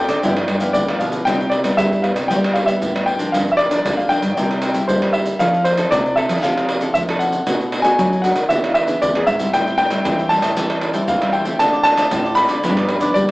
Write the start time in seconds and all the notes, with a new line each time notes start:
Already playing: A2 C4 F4 A4 G5
0.08 D3 A4 C5 D5, pandeiro, tamborim, maracas
0.23 G2 F3 B3 D4 E4 G4 B4 F5, pandeiro, maracas, surdo
0.37 G4 B4 F5, pandeiro, tamborim, maracas
0.48 G2, muted cavaquinho stroke, pandeiro, tamborim
0.60 F3 B3 E4 G4 B4 F5, pandeiro, maracas
0.73 A2 D3 D5, pandeiro, maracas, surdo
0.88 F3 B3 E4 G4 B4 F5, pandeiro, tamborim, maracas
0.98 B2 D4 G4 B4 F5, pandeiro, maracas
1.12 G4 B4 F5, pandeiro, maracas
1.25 C3 G3 B3 E4 G5, pandeiro, tamborim, maracas, surdo
1.40 pandeiro, maracas
1.50 D5, pandeiro, tamborim
1.64 G3 B3 E4, pandeiro, tamborim, maracas
1.77 G2 G3 E5, pandeiro, tamborim, maracas, surdo
1.92 pandeiro, maracas
2.02 G3 B3 E4 F5, pandeiro, tamborim, surdo
2.15 C3, pandeiro, tamborim, maracas
2.28 C3 G3 B3 E4 G5, pandeiro, maracas, surdo
2.44 pandeiro, tamborim, maracas
2.53 F5, pandeiro, tamborim
2.66 G3 B3 E4 E5, pandeiro, maracas
2.81 G2 A2, pandeiro, maracas, surdo
2.94 G3 B3 E4, pandeiro, tamborim, maracas
3.06 G5, pandeiro
3.19 F3 A#3 D4, pandeiro, maracas
3.32 G2 F5, pandeiro, tamborim, maracas, surdo
3.48 E5, pandeiro, maracas
3.57 D5, pandeiro, tamborim
3.70 F3 A#3 D4, pandeiro, tamborim, maracas
3.85 D3, pandeiro, tamborim, maracas, surdo
3.97 F5, pandeiro, maracas
4.09 F3 A#3 D4 G5, pandeiro, tamborim
4.22 G2, pandeiro, tamborim, maracas
4.37 C3 G3 A#3 E4, pandeiro, maracas, surdo
4.51 pandeiro, tamborim, maracas
4.62 pandeiro, tamborim, maracas
4.74 G3 A#3 E4, pandeiro, maracas
4.88 G2 G3 C5, pandeiro, maracas, surdo
5.02 G3 A#3 E4, pandeiro, tamborim, maracas
5.13 E5, pandeiro
5.26 pandeiro, maracas
5.39 F3 C4 E4 A4 F5, pandeiro, tamborim, maracas, surdo
5.54 pandeiro, maracas
5.64 C5, pandeiro, tamborim, maracas
5.77 C4 E4 A4, pandeiro, tamborim, maracas
5.91 C3 D5, pandeiro, tamborim, maracas, surdo
6.06 pandeiro, maracas
6.16 C4 E4 A4 E5, pandeiro, tamborim
6.29 F3, pandeiro, tamborim, maracas
6.42 C3 F3 C4 E4 A4 F5, pandeiro, maracas, surdo
6.57 pandeiro, tamborim, maracas
6.69 pandeiro, tamborim
6.81 C4 E4 A4, pandeiro, maracas
6.94 C3 F3 E5, pandeiro, maracas, surdo
7.09 C4 E4 A4, pandeiro, tamborim, maracas
7.19 F#5, pandeiro, maracas
7.32 pandeiro, maracas
7.47 B2 A3 D4 F#4, pandeiro, tamborim, maracas, surdo
7.60 pandeiro, maracas
7.72 pandeiro, tamborim
7.82 A3 D4 F#4 G#5, pandeiro, tamborim, maracas
7.98 F#2 F#3, pandeiro, tamborim, maracas, surdo
8.12 pandeiro, maracas
8.22 A3 D4 F#4 F#5, pandeiro, tamborim, maracas
8.35 D#3, pandeiro, tamborim, maracas
8.49 E3 B3 D4 G#4 E5, pandeiro, maracas, surdo
8.64 pandeiro, tamborim, maracas
8.68 F5
8.74 E5, pandeiro, tamborim
8.87 B3 D4 G#4, pandeiro, maracas
9.02 E2 B2 D5, pandeiro, maracas, surdo
9.15 B3 D4 G#4, pandeiro, tamborim, maracas
9.27 G#2 E5, pandeiro, maracas
9.39 G3 C4 E4, pandeiro, maracas
9.53 A2 A4 C5 E5 G5, pandeiro, tamborim, maracas, surdo
9.66 C5 E5 G5, pandeiro, maracas
9.78 G5, muted cavaquinho stroke, pandeiro, tamborim
9.90 G3 C4 E4 C5 E5 G5, pandeiro, tamborim, maracas
10.05 E3 A4 C5 E5 G5, pandeiro, tamborim, maracas, surdo
10.18 C5 E5 G5, pandeiro, maracas
10.29 G3 C4 E4 A5, pandeiro, tamborim
10.42 A2 C5 E5 G5, pandeiro, tamborim, maracas
10.56 A2 E3 G3 C4 E4 A4 C5 E5 G5, pandeiro, maracas, surdo
10.70 C5 E5 G5, pandeiro, tamborim, maracas
10.81 muted cavaquinho stroke, pandeiro, tamborim
10.93 G3 C4 E4 C5 E5 G5, pandeiro, maracas
11.08 E3 F5, pandeiro, maracas, surdo
11.21 G3 C4 E4 C5 E5 G5, pandeiro, tamborim, maracas
11.32 A4 C5 E5 G5, pandeiro
11.45 A3 C4 F4 C5 E5 G5, pandeiro, maracas
11.59 D3 F4 A4 C5 D5 A5, pandeiro, tamborim, maracas, surdo
11.73 A4 C5 D5, pandeiro, maracas
11.83 A5, pandeiro, tamborim, maracas
11.97 A3 C4 F4 A4 C5 D5, pandeiro, tamborim, maracas
12.11 A2 F4 A4 C5 D5, pandeiro, tamborim, maracas, surdo
12.25 A4 C5 D5, pandeiro, maracas
12.35 A3 C4 F4 B5, pandeiro, tamborim, maracas
12.49 D3 A4 C5 D5, pandeiro, tamborim, maracas
12.63 G2 F3 B3 D4 F4 G4 B4 D5, pandeiro, maracas, surdo
12.77 G4 B4 D5, pandeiro, tamborim, maracas
12.89 muted cavaquinho stroke, pandeiro, tamborim
13.00 F3 B3 D4 G4 B4 D5, pandeiro, maracas
13.14 D3 G3 D5, pandeiro, maracas, surdo